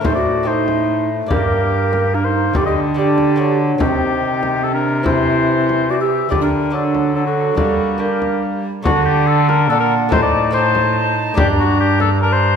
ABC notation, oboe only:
X:1
M:3/4
L:1/16
Q:1/4=144
K:Gm
V:1 name="Oboe"
c d3 c6 z2 | G8 B c3 | d e3 d6 z2 | G8 A B3 |
c8 d =e3 | d B3 A4 A ^F3 | ^F4 G4 z4 | ^F2 G2 A2 B2 A B3 |
c d3 c6 z2 | G2 ^F2 G2 A2 B c3 |]